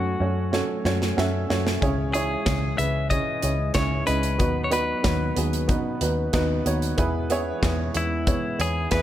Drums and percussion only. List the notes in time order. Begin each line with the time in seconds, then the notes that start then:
0.53 snare
0.85 snare
1.02 snare
1.18 snare
1.50 snare
1.67 snare
1.82 kick, closed hi-hat
2.14 closed hi-hat
2.46 kick, snare, clap, closed hi-hat
2.79 closed hi-hat
3.11 kick, closed hi-hat
3.42 closed hi-hat
3.74 kick, snare, clap, closed hi-hat
4.07 closed hi-hat
4.23 closed hi-hat
4.39 kick, closed hi-hat
4.72 closed hi-hat
5.04 kick, snare, clap, closed hi-hat
5.37 closed hi-hat
5.53 closed hi-hat
5.69 kick, closed hi-hat
6.01 closed hi-hat
6.33 kick, snare, clap, closed hi-hat
6.66 closed hi-hat
6.82 closed hi-hat
6.98 kick, closed hi-hat
7.30 closed hi-hat
7.63 kick, snare, clap, closed hi-hat
7.95 closed hi-hat
8.27 kick, closed hi-hat
8.60 closed hi-hat
8.91 kick, snare, clap, closed hi-hat